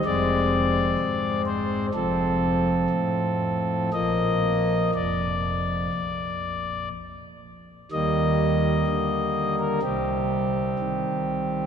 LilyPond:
<<
  \new Staff \with { instrumentName = "Pipe organ" } { \time 4/4 \key ees \major \tempo 4 = 62 d''4. c''8 a'2 | ees''4 d''2 r4 | ees''4.~ ees''16 bes'16 g'2 | }
  \new Staff \with { instrumentName = "Pipe organ" } { \clef bass \time 4/4 \key ees \major << { <aes c'>2 <f c'>2 | r1 | <g bes>2 <g c'>2 | } \\ { <f,, f,>4 aes,4 <f,, f,>4 a,4 | <bes,, bes, f bes>4 <f,, f,>4 bes,,4 r4 | <ees, ees>4 d4 <c, c>4 ees4 | } >> }
>>